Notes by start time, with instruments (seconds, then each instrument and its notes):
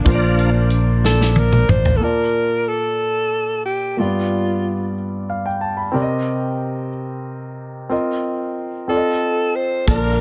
Already playing: grand piano A#2 D4 F4 A#4 F5, string section D3 F3 A#3 D4
0.05 fingered electric bass A#1, grand piano A#2 D4 F4 A#4 C5, tonewheel organ F3 A#3 D4, kick, closed hi-hat
0.15 grand piano D5
0.39 closed hi-hat
0.70 closed hi-hat
1.05 alto saxophone A4, snare
1.21 snare
1.31 alto saxophone A4
1.36 alto saxophone A#4, high tom
1.52 mid tom
1.69 fingered electric bass A1, alto saxophone C5, mid tom
1.85 floor tom
1.97 grand piano A#3, alto saxophone A4
2.01 grand piano A#2 F4 D5 A5, alto saxophone A#4
2.68 alto saxophone A4
3.65 alto saxophone G4
3.97 grand piano G2 A#3 F4 G4 D5, alto saxophone F4
4.04 grand piano B3
5.30 grand piano F5
5.46 grand piano G5
5.61 grand piano A5
5.77 grand piano B5
5.92 grand piano C3 C4 G4 A#4 D5
6.02 grand piano D#5
7.89 grand piano C4 F4 A#4 D#5
8.88 grand piano C4 F4 A4 D5, alto saxophone A4
8.96 grand piano D#5
9.56 alto saxophone C5
9.87 fingered electric bass A#1, grand piano A#2 A#3 F4 D5 A5, tonewheel organ D3 F4 A#4, alto saxophone A#4, kick, closed hi-hat